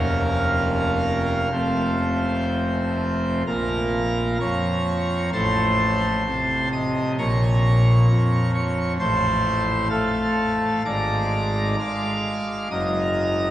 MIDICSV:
0, 0, Header, 1, 2, 480
1, 0, Start_track
1, 0, Key_signature, -5, "minor"
1, 0, Tempo, 975610
1, 1707, Time_signature, 4, 2, 24, 8
1, 1707, Tempo, 930233
1, 3627, Tempo, 904977
1, 5067, Tempo, 934579
1, 6916, End_track
2, 0, Start_track
2, 0, Title_t, "Pipe organ"
2, 0, Program_c, 0, 19
2, 0, Note_on_c, 0, 29, 53
2, 0, Note_on_c, 0, 41, 60
2, 0, Note_on_c, 0, 58, 48
2, 0, Note_on_c, 0, 61, 48
2, 0, Note_on_c, 0, 70, 46
2, 0, Note_on_c, 0, 77, 94
2, 729, Note_off_c, 0, 29, 0
2, 729, Note_off_c, 0, 41, 0
2, 729, Note_off_c, 0, 61, 0
2, 730, Note_off_c, 0, 58, 0
2, 730, Note_off_c, 0, 70, 0
2, 747, Note_on_c, 0, 29, 52
2, 748, Note_on_c, 0, 41, 54
2, 748, Note_on_c, 0, 57, 46
2, 748, Note_on_c, 0, 60, 46
2, 748, Note_on_c, 0, 72, 44
2, 1206, Note_off_c, 0, 77, 0
2, 1685, Note_off_c, 0, 29, 0
2, 1686, Note_off_c, 0, 41, 0
2, 1686, Note_off_c, 0, 57, 0
2, 1686, Note_off_c, 0, 60, 0
2, 1686, Note_off_c, 0, 72, 0
2, 1705, Note_on_c, 0, 34, 73
2, 1705, Note_on_c, 0, 46, 66
2, 1707, Note_on_c, 0, 70, 71
2, 1707, Note_on_c, 0, 77, 75
2, 1707, Note_on_c, 0, 82, 99
2, 2174, Note_off_c, 0, 34, 0
2, 2174, Note_off_c, 0, 46, 0
2, 2176, Note_off_c, 0, 70, 0
2, 2176, Note_off_c, 0, 77, 0
2, 2176, Note_off_c, 0, 82, 0
2, 2186, Note_on_c, 0, 41, 71
2, 2187, Note_on_c, 0, 82, 78
2, 2187, Note_on_c, 0, 85, 97
2, 2188, Note_on_c, 0, 73, 83
2, 2650, Note_off_c, 0, 41, 0
2, 2650, Note_off_c, 0, 82, 0
2, 2650, Note_off_c, 0, 85, 0
2, 2651, Note_off_c, 0, 73, 0
2, 2665, Note_on_c, 0, 45, 71
2, 2665, Note_on_c, 0, 72, 75
2, 2665, Note_on_c, 0, 84, 110
2, 2666, Note_on_c, 0, 33, 66
2, 2667, Note_on_c, 0, 81, 79
2, 3131, Note_off_c, 0, 45, 0
2, 3132, Note_off_c, 0, 33, 0
2, 3146, Note_on_c, 0, 48, 64
2, 3366, Note_off_c, 0, 72, 0
2, 3366, Note_off_c, 0, 84, 0
2, 3367, Note_off_c, 0, 81, 0
2, 3386, Note_on_c, 0, 87, 103
2, 3387, Note_on_c, 0, 75, 79
2, 3590, Note_off_c, 0, 75, 0
2, 3590, Note_off_c, 0, 87, 0
2, 3612, Note_off_c, 0, 48, 0
2, 3623, Note_on_c, 0, 46, 72
2, 3624, Note_on_c, 0, 34, 67
2, 3624, Note_on_c, 0, 73, 81
2, 3624, Note_on_c, 0, 82, 75
2, 3624, Note_on_c, 0, 85, 105
2, 4092, Note_off_c, 0, 34, 0
2, 4092, Note_off_c, 0, 46, 0
2, 4106, Note_on_c, 0, 41, 72
2, 4326, Note_off_c, 0, 73, 0
2, 4326, Note_off_c, 0, 82, 0
2, 4326, Note_off_c, 0, 85, 0
2, 4344, Note_on_c, 0, 85, 103
2, 4345, Note_on_c, 0, 73, 83
2, 4550, Note_off_c, 0, 73, 0
2, 4550, Note_off_c, 0, 85, 0
2, 4572, Note_off_c, 0, 41, 0
2, 4583, Note_on_c, 0, 84, 113
2, 4584, Note_on_c, 0, 45, 71
2, 4584, Note_on_c, 0, 81, 86
2, 4585, Note_on_c, 0, 33, 76
2, 4586, Note_on_c, 0, 72, 84
2, 5050, Note_off_c, 0, 45, 0
2, 5050, Note_off_c, 0, 84, 0
2, 5051, Note_off_c, 0, 33, 0
2, 5051, Note_off_c, 0, 81, 0
2, 5052, Note_off_c, 0, 72, 0
2, 5061, Note_on_c, 0, 81, 106
2, 5062, Note_on_c, 0, 57, 70
2, 5064, Note_on_c, 0, 69, 78
2, 5064, Note_on_c, 0, 77, 81
2, 5537, Note_off_c, 0, 81, 0
2, 5538, Note_off_c, 0, 57, 0
2, 5539, Note_off_c, 0, 69, 0
2, 5539, Note_off_c, 0, 77, 0
2, 5552, Note_on_c, 0, 32, 73
2, 5552, Note_on_c, 0, 44, 76
2, 5552, Note_on_c, 0, 86, 110
2, 5554, Note_on_c, 0, 74, 92
2, 5554, Note_on_c, 0, 82, 88
2, 6017, Note_off_c, 0, 32, 0
2, 6017, Note_off_c, 0, 44, 0
2, 6017, Note_off_c, 0, 86, 0
2, 6018, Note_off_c, 0, 74, 0
2, 6018, Note_off_c, 0, 82, 0
2, 6033, Note_on_c, 0, 56, 70
2, 6035, Note_on_c, 0, 77, 91
2, 6035, Note_on_c, 0, 86, 94
2, 6035, Note_on_c, 0, 89, 119
2, 6492, Note_off_c, 0, 56, 0
2, 6493, Note_off_c, 0, 77, 0
2, 6493, Note_off_c, 0, 86, 0
2, 6493, Note_off_c, 0, 89, 0
2, 6506, Note_on_c, 0, 30, 65
2, 6506, Note_on_c, 0, 42, 70
2, 6506, Note_on_c, 0, 87, 111
2, 6507, Note_on_c, 0, 75, 81
2, 6507, Note_on_c, 0, 82, 83
2, 6916, Note_off_c, 0, 30, 0
2, 6916, Note_off_c, 0, 42, 0
2, 6916, Note_off_c, 0, 75, 0
2, 6916, Note_off_c, 0, 82, 0
2, 6916, Note_off_c, 0, 87, 0
2, 6916, End_track
0, 0, End_of_file